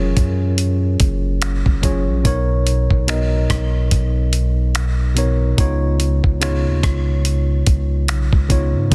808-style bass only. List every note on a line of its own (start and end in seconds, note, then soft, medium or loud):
0.00 0.14 F1 loud
0.17 0.97 F#2 medium
1.00 1.63 F#1 medium
1.66 2.09 F#1 loud
2.08 2.24 A#1 loud
2.25 2.88 B1 loud
2.91 3.48 B1 loud
3.50 3.90 B1 loud
3.92 5.54 B1 loud
5.58 6.21 C#2 loud
6.24 6.67 C#2 loud
6.66 6.82 D#2 medium
6.83 7.63 C#2 loud
7.67 8.10 C#2 loud
8.09 8.31 B1 loud
8.33 8.76 C#2 loud
8.74 8.91 G#2 loud
8.92 8.95 D#1 loud